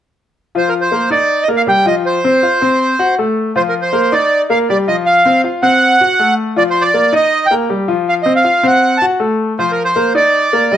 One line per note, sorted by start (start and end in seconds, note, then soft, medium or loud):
0.55 0.86 F3 medium
0.55 0.86 F4 medium
0.55 0.69 C5 medium
0.69 0.74 A#4 medium
0.81 1.10 C5 medium
0.92 1.08 A#3 medium
0.92 1.08 A#4 medium
1.10 1.42 D#4 medium
1.10 1.42 D5 medium
1.10 1.44 D5 medium
1.43 1.49 D#5 medium
1.48 1.64 A#3 medium
1.48 1.64 A#4 medium
1.57 1.62 F5 medium
1.67 1.83 G3 medium
1.67 1.83 G4 medium
1.67 1.86 G5 medium
1.86 2.17 F3 medium
1.86 2.17 F4 medium
1.86 1.95 D#5 medium
2.06 3.15 C5 medium
2.24 2.40 C4 medium
2.24 2.40 C5 medium
2.43 2.59 F4 medium
2.43 2.59 F5 medium
2.62 2.93 C4 medium
2.62 2.93 C5 medium
2.99 3.15 F#4 medium
2.99 3.15 F#5 medium
3.18 3.49 A3 medium
3.18 3.50 A4 medium
3.56 3.87 F3 medium
3.56 3.87 F4 medium
3.56 3.62 C5 medium
3.69 3.74 A#4 medium
3.82 4.14 C5 medium
3.93 4.09 A#3 medium
3.93 4.09 A#4 medium
4.12 4.43 D#4 medium
4.12 4.43 D5 medium
4.12 4.42 D5 medium
4.50 4.65 A#3 medium
4.50 4.66 A#4 medium
4.50 4.59 F5 medium
4.69 4.85 G3 medium
4.69 4.85 G4 medium
4.69 4.78 D5 medium
4.88 5.19 F3 medium
4.88 5.19 F4 medium
4.88 4.96 D#5 medium
5.06 5.41 F5 loud
5.25 5.41 C4 medium
5.25 5.42 C5 medium
5.44 5.60 F4 medium
5.44 5.60 F5 medium
5.63 5.94 C4 medium
5.63 5.94 C5 medium
5.63 6.34 F#5 loud
6.01 6.16 F#4 medium
6.01 6.17 F#5 medium
6.19 6.51 A3 medium
6.19 6.51 A4 medium
6.56 6.88 F3 medium
6.56 6.88 F4 medium
6.56 6.63 D5 medium
6.70 6.83 C5 medium
6.81 7.14 D5 medium
6.94 7.10 A#3 medium
6.94 7.10 A#4 medium
7.13 7.44 D#4 medium
7.13 7.44 D#5 medium
7.13 7.47 D#5 medium
7.46 7.54 G5 medium
7.51 7.67 A#3 medium
7.51 7.67 A#4 medium
7.70 7.85 G3 medium
7.70 7.86 G4 medium
7.88 8.20 F3 medium
7.88 8.20 F4 medium
8.09 8.14 F5 medium
8.23 8.42 C4 medium
8.23 8.42 C5 medium
8.23 8.33 D#5 medium
8.36 8.67 F5 medium
8.44 8.60 F4 medium
8.44 8.61 F5 medium
8.63 8.95 C4 medium
8.63 8.95 C5 medium
8.63 8.98 F#5 medium
8.97 9.06 A5 medium
9.02 9.17 F#4 medium
9.02 9.18 F#5 medium
9.20 9.51 A3 medium
9.20 9.51 A4 medium
9.59 9.90 F3 medium
9.59 9.90 F4 medium
9.59 9.72 C5 medium
9.71 9.83 A#4 medium
9.84 10.13 C5 medium
9.96 10.12 A#3 medium
9.96 10.12 A#4 medium
10.15 10.46 D#4 medium
10.15 10.46 D5 medium
10.15 10.74 D5 medium
10.53 10.68 A#3 medium
10.53 10.68 A#4 medium
10.72 10.77 G3 medium
10.72 10.77 G4 medium
10.72 10.77 D#5 medium